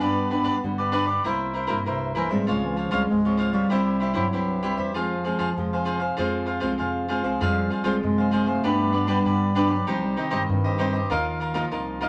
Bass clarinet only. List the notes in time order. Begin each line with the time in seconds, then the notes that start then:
0.01 B3
1.86 C3
2.16 E3
2.31 G3
2.48 G#3
2.65 E3
2.77 F3
2.92 G3
3.10 G#3
3.53 G3
4.15 F#3
4.63 G3
4.95 F3
7.41 G3
7.85 G3
8.04 G#3
8.46 A3
8.94 B3
9.07 G3
9.70 F#3
9.88 F3
10.04 G3
10.18 D#3